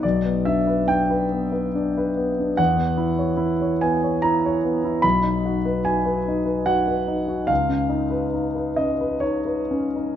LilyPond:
\new Staff \with { instrumentName = "Grand piano" } { \time 3/4 \key b \major \tempo 4 = 71 << { d''8 e''8 g''2 | fis''4. gis''8 ais''4 | b''4 gis''4 fis''4 | eis''4. dis''8 cis''4 | } \\ { b,,16 b16 d'16 b'16 d'16 b'16 b16 b'16 d'16 b'16 b16 d'16 | e,16 b16 e'16 cis''16 e'16 cis''16 b16 cis''16 e'16 cis''16 b16 e'16 | b,,16 dis'16 fis'16 b'16 fis'16 b'16 dis'16 b'16 fis'16 b'16 dis'16 fis'16 | cis,16 cis'16 dis'16 b'16 dis'16 b'16 cis'16 b'16 dis'16 b'16 cis'16 dis'16 | } >> }